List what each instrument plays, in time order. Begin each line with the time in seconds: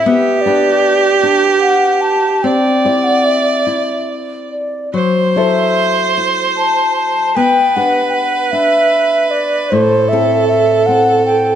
Already playing: nylon-string guitar C4 E4 A4, flute E5
0.06 nylon-string guitar B3, viola G4
0.41 flute D5
0.46 nylon-string guitar D4 G4 B4
1.23 nylon-string guitar D4
1.61 flute F#5
2.01 flute A5
2.43 nylon-string guitar C4, viola D5, flute G5
2.85 nylon-string guitar E4 G4 D5
3.04 flute F#5
3.25 flute E5
3.67 nylon-string guitar E4
4.51 flute D5
4.93 nylon-string guitar F#3, viola C5, flute C5
5.36 nylon-string guitar E4 A4 C5, flute E5
6.18 nylon-string guitar E4
6.57 flute A5
6.96 flute A5
7.36 nylon-string guitar B3, viola B4, flute G5
7.76 nylon-string guitar D4 G4 B4, flute F#5
8.09 flute G5
8.15 flute F#5
8.52 nylon-string guitar D4, flute E5
9.31 flute D5
9.70 nylon-string guitar A2, viola A4, flute C5
10.09 nylon-string guitar C4, flute E5
10.13 nylon-string guitar E4 A4
10.48 flute E5
10.86 nylon-string guitar C4, flute F#5
11.26 flute G5